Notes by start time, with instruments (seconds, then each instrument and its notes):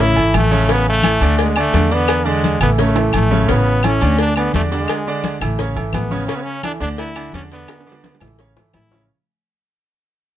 Already playing: upright bass A1
0.00 grand piano C#3 C#4 C#5, trombone E4, cowbell
0.15 upright bass G#1, grand piano E3 E4 A4, high conga, low agogo
0.34 upright bass A1, trombone A3, cowbell, high conga, low timbale, low agogo, claves
0.51 grand piano C#3 C#4 C#5, high conga
0.69 grand piano C#3 C#4 C#5, trombone B3, cowbell, high conga, low agogo
0.86 trombone A3, high conga
1.03 grand piano E3 E4 A4, cowbell, high conga, low timbale, low agogo, claves
1.21 upright bass D2, grand piano D3 D4 D5, cowbell, high conga, low agogo
1.38 trombone G#3, cowbell, high conga, low agogo
1.56 grand piano D3 D4 D5, high conga, low agogo, claves
1.60 trombone A3
1.74 upright bass E2, grand piano D3 D4 D5, cowbell, high conga, low timbale, low agogo
1.91 grand piano D3 D4 D5, trombone B3, cowbell, high conga
2.08 cowbell, high conga, low agogo, claves
2.25 grand piano D3 D4 D5, trombone G#3, high conga
2.44 cowbell, high conga, low timbale, low agogo
2.61 upright bass A1, grand piano E3 E4 A4, trombone B3, cowbell, high conga, low conga, low agogo, claves
2.78 grand piano C#3 C#4 C#5, trombone A3, cowbell, high conga, low conga, high timbale
2.95 grand piano E3 E4 A4, high conga, high timbale, low agogo
3.13 upright bass A1, trombone A3, cowbell, high conga, low agogo, claves
3.31 grand piano C#3 C#4 C#5, high conga, low timbale
3.48 upright bass A1, grand piano C#3 C#4 C#5, trombone B3, cowbell, low agogo
3.67 high conga
3.83 grand piano E3 E4 A4, trombone C#4, cowbell, high conga, low timbale, low agogo, claves
4.01 upright bass D2, grand piano D3 D4 D5, cowbell, high conga, low agogo
4.19 trombone D4, cowbell, high conga, low agogo
4.36 grand piano D3 D4 D5, trombone B3, high conga, low agogo, claves
4.54 upright bass E2, grand piano D3 D4 D5, trombone A3, cowbell, high conga, low timbale, low agogo
4.71 grand piano D3 D4 D5, trombone G#3, cowbell, high conga
4.88 cowbell, high conga, low agogo, claves
5.06 grand piano D3 D4 D5, high conga
5.24 cowbell, high conga, low timbale, low agogo
5.41 upright bass A1, grand piano E3 E4 A4, cowbell, high conga, low conga, low agogo, claves
5.59 grand piano C#3 C#4 C#5, cowbell, high conga, low conga
5.76 upright bass G#1, grand piano E3 E4 A4, high conga, low agogo
5.93 upright bass A1, trombone B3, cowbell, high conga, low timbale, low agogo, claves
6.11 grand piano C#3 C#4 C#5, high conga
6.28 grand piano C#3 C#4 C#5, trombone C#4, cowbell, high conga, low agogo
6.36 trombone B3
6.43 trombone C#4, high conga
6.63 grand piano E3 E4 A4, trombone D4, cowbell, high conga, low timbale, low agogo, claves
6.80 upright bass D2, grand piano D3 D4 D5, trombone D4, cowbell, high conga, low agogo
6.98 trombone E4, cowbell, high conga, low agogo
7.15 grand piano D3 D4 D5, high conga, low agogo, claves
7.33 upright bass E2, grand piano D3 D4 D5, trombone C#4, cowbell, high conga, low timbale, low agogo
7.51 grand piano D3 D4 D5, trombone B3, cowbell, high conga
7.68 cowbell, high bongo, high conga, high timbale, low agogo, claves
7.80 high timbale
7.86 grand piano D3 D4 D5, high conga
7.92 low timbale
8.04 cowbell, high conga, high timbale, low agogo
8.15 low timbale
8.20 upright bass A1, grand piano E3 E4 A4, cowbell, low bongo, high conga, low conga, low agogo, claves
8.27 low timbale
8.39 grand piano C#3 C#4 C#5, cowbell, high conga, low timbale
8.56 upright bass G#1, grand piano E3 E4 A4, low bongo, high conga, low agogo
8.73 upright bass A1, trombone E4, cowbell, low bongo, high conga, low timbale, low agogo, claves
8.91 grand piano C#3 C#4 C#5, low bongo, high conga
8.98 low timbale